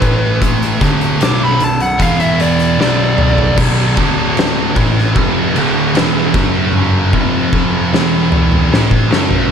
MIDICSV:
0, 0, Header, 1, 5, 480
1, 0, Start_track
1, 0, Key_signature, 2, "minor"
1, 0, Tempo, 790514
1, 254, Time_signature, 4, 2, 24, 8
1, 5778, End_track
2, 0, Start_track
2, 0, Title_t, "Lead electric guitar"
2, 0, Program_c, 0, 29
2, 0, Note_on_c, 0, 71, 82
2, 234, Note_off_c, 0, 71, 0
2, 744, Note_on_c, 0, 86, 105
2, 856, Note_off_c, 0, 86, 0
2, 878, Note_on_c, 0, 83, 89
2, 983, Note_off_c, 0, 83, 0
2, 996, Note_on_c, 0, 81, 107
2, 1102, Note_off_c, 0, 81, 0
2, 1107, Note_on_c, 0, 78, 96
2, 1217, Note_off_c, 0, 78, 0
2, 1228, Note_on_c, 0, 77, 84
2, 1337, Note_off_c, 0, 77, 0
2, 1340, Note_on_c, 0, 76, 99
2, 1453, Note_off_c, 0, 76, 0
2, 1467, Note_on_c, 0, 74, 89
2, 1694, Note_off_c, 0, 74, 0
2, 1706, Note_on_c, 0, 74, 106
2, 2166, Note_off_c, 0, 74, 0
2, 5778, End_track
3, 0, Start_track
3, 0, Title_t, "Distorted electric guitar"
3, 0, Program_c, 1, 30
3, 14, Note_on_c, 1, 45, 110
3, 487, Note_off_c, 1, 45, 0
3, 496, Note_on_c, 1, 38, 91
3, 728, Note_off_c, 1, 38, 0
3, 732, Note_on_c, 1, 35, 104
3, 966, Note_off_c, 1, 35, 0
3, 976, Note_on_c, 1, 35, 73
3, 1167, Note_off_c, 1, 35, 0
3, 1215, Note_on_c, 1, 40, 127
3, 1687, Note_off_c, 1, 40, 0
3, 1695, Note_on_c, 1, 35, 115
3, 2167, Note_off_c, 1, 35, 0
3, 2176, Note_on_c, 1, 35, 111
3, 2408, Note_off_c, 1, 35, 0
3, 2416, Note_on_c, 1, 38, 111
3, 2888, Note_off_c, 1, 38, 0
3, 2893, Note_on_c, 1, 45, 106
3, 3126, Note_off_c, 1, 45, 0
3, 3132, Note_on_c, 1, 41, 109
3, 3365, Note_off_c, 1, 41, 0
3, 3369, Note_on_c, 1, 38, 108
3, 3604, Note_off_c, 1, 38, 0
3, 3612, Note_on_c, 1, 40, 125
3, 3845, Note_off_c, 1, 40, 0
3, 3851, Note_on_c, 1, 42, 115
3, 4325, Note_off_c, 1, 42, 0
3, 4330, Note_on_c, 1, 41, 92
3, 4805, Note_off_c, 1, 41, 0
3, 4816, Note_on_c, 1, 40, 116
3, 5288, Note_off_c, 1, 40, 0
3, 5292, Note_on_c, 1, 45, 103
3, 5526, Note_off_c, 1, 45, 0
3, 5535, Note_on_c, 1, 42, 104
3, 5768, Note_off_c, 1, 42, 0
3, 5778, End_track
4, 0, Start_track
4, 0, Title_t, "Grand piano"
4, 0, Program_c, 2, 0
4, 15, Note_on_c, 2, 33, 95
4, 470, Note_off_c, 2, 33, 0
4, 494, Note_on_c, 2, 26, 103
4, 717, Note_off_c, 2, 26, 0
4, 742, Note_on_c, 2, 23, 90
4, 961, Note_off_c, 2, 23, 0
4, 980, Note_on_c, 2, 23, 94
4, 1200, Note_off_c, 2, 23, 0
4, 1213, Note_on_c, 2, 28, 100
4, 1669, Note_off_c, 2, 28, 0
4, 1704, Note_on_c, 2, 23, 95
4, 2154, Note_off_c, 2, 23, 0
4, 2175, Note_on_c, 2, 23, 101
4, 2397, Note_off_c, 2, 23, 0
4, 2413, Note_on_c, 2, 26, 93
4, 2869, Note_off_c, 2, 26, 0
4, 2894, Note_on_c, 2, 33, 102
4, 3117, Note_off_c, 2, 33, 0
4, 3136, Note_on_c, 2, 29, 96
4, 3358, Note_off_c, 2, 29, 0
4, 3386, Note_on_c, 2, 26, 99
4, 3603, Note_off_c, 2, 26, 0
4, 3623, Note_on_c, 2, 28, 93
4, 3842, Note_off_c, 2, 28, 0
4, 3852, Note_on_c, 2, 30, 96
4, 4308, Note_off_c, 2, 30, 0
4, 4332, Note_on_c, 2, 29, 105
4, 4789, Note_off_c, 2, 29, 0
4, 4817, Note_on_c, 2, 28, 102
4, 5272, Note_off_c, 2, 28, 0
4, 5297, Note_on_c, 2, 33, 93
4, 5519, Note_off_c, 2, 33, 0
4, 5530, Note_on_c, 2, 30, 105
4, 5756, Note_off_c, 2, 30, 0
4, 5778, End_track
5, 0, Start_track
5, 0, Title_t, "Drums"
5, 12, Note_on_c, 9, 36, 119
5, 15, Note_on_c, 9, 42, 74
5, 73, Note_off_c, 9, 36, 0
5, 76, Note_off_c, 9, 42, 0
5, 253, Note_on_c, 9, 36, 108
5, 255, Note_on_c, 9, 42, 102
5, 314, Note_off_c, 9, 36, 0
5, 316, Note_off_c, 9, 42, 0
5, 379, Note_on_c, 9, 42, 52
5, 440, Note_off_c, 9, 42, 0
5, 493, Note_on_c, 9, 36, 108
5, 497, Note_on_c, 9, 42, 79
5, 510, Note_on_c, 9, 38, 36
5, 554, Note_off_c, 9, 36, 0
5, 558, Note_off_c, 9, 42, 0
5, 571, Note_off_c, 9, 38, 0
5, 614, Note_on_c, 9, 42, 44
5, 675, Note_off_c, 9, 42, 0
5, 733, Note_on_c, 9, 42, 98
5, 746, Note_on_c, 9, 38, 115
5, 794, Note_off_c, 9, 42, 0
5, 807, Note_off_c, 9, 38, 0
5, 974, Note_on_c, 9, 42, 74
5, 1034, Note_off_c, 9, 42, 0
5, 1095, Note_on_c, 9, 42, 53
5, 1156, Note_off_c, 9, 42, 0
5, 1213, Note_on_c, 9, 36, 98
5, 1214, Note_on_c, 9, 42, 94
5, 1273, Note_off_c, 9, 36, 0
5, 1275, Note_off_c, 9, 42, 0
5, 1335, Note_on_c, 9, 42, 46
5, 1396, Note_off_c, 9, 42, 0
5, 1456, Note_on_c, 9, 42, 72
5, 1517, Note_off_c, 9, 42, 0
5, 1574, Note_on_c, 9, 42, 43
5, 1635, Note_off_c, 9, 42, 0
5, 1704, Note_on_c, 9, 38, 71
5, 1765, Note_off_c, 9, 38, 0
5, 1931, Note_on_c, 9, 45, 94
5, 1992, Note_off_c, 9, 45, 0
5, 2054, Note_on_c, 9, 43, 101
5, 2115, Note_off_c, 9, 43, 0
5, 2170, Note_on_c, 9, 49, 126
5, 2172, Note_on_c, 9, 36, 117
5, 2231, Note_off_c, 9, 49, 0
5, 2233, Note_off_c, 9, 36, 0
5, 2410, Note_on_c, 9, 51, 91
5, 2412, Note_on_c, 9, 36, 110
5, 2471, Note_off_c, 9, 51, 0
5, 2473, Note_off_c, 9, 36, 0
5, 2653, Note_on_c, 9, 51, 110
5, 2666, Note_on_c, 9, 38, 106
5, 2714, Note_off_c, 9, 51, 0
5, 2727, Note_off_c, 9, 38, 0
5, 2892, Note_on_c, 9, 36, 117
5, 2892, Note_on_c, 9, 51, 88
5, 2953, Note_off_c, 9, 36, 0
5, 2953, Note_off_c, 9, 51, 0
5, 3025, Note_on_c, 9, 38, 33
5, 3086, Note_off_c, 9, 38, 0
5, 3131, Note_on_c, 9, 51, 93
5, 3132, Note_on_c, 9, 36, 101
5, 3192, Note_off_c, 9, 51, 0
5, 3193, Note_off_c, 9, 36, 0
5, 3375, Note_on_c, 9, 51, 76
5, 3435, Note_off_c, 9, 51, 0
5, 3613, Note_on_c, 9, 51, 110
5, 3626, Note_on_c, 9, 38, 118
5, 3674, Note_off_c, 9, 51, 0
5, 3687, Note_off_c, 9, 38, 0
5, 3851, Note_on_c, 9, 36, 119
5, 3853, Note_on_c, 9, 51, 83
5, 3866, Note_on_c, 9, 38, 37
5, 3912, Note_off_c, 9, 36, 0
5, 3914, Note_off_c, 9, 51, 0
5, 3926, Note_off_c, 9, 38, 0
5, 4086, Note_on_c, 9, 48, 66
5, 4147, Note_off_c, 9, 48, 0
5, 4331, Note_on_c, 9, 36, 75
5, 4391, Note_off_c, 9, 36, 0
5, 4571, Note_on_c, 9, 36, 84
5, 4632, Note_off_c, 9, 36, 0
5, 4823, Note_on_c, 9, 38, 98
5, 4884, Note_off_c, 9, 38, 0
5, 5052, Note_on_c, 9, 45, 99
5, 5112, Note_off_c, 9, 45, 0
5, 5173, Note_on_c, 9, 45, 80
5, 5234, Note_off_c, 9, 45, 0
5, 5305, Note_on_c, 9, 38, 94
5, 5366, Note_off_c, 9, 38, 0
5, 5411, Note_on_c, 9, 36, 80
5, 5472, Note_off_c, 9, 36, 0
5, 5541, Note_on_c, 9, 38, 99
5, 5602, Note_off_c, 9, 38, 0
5, 5651, Note_on_c, 9, 43, 93
5, 5711, Note_off_c, 9, 43, 0
5, 5778, End_track
0, 0, End_of_file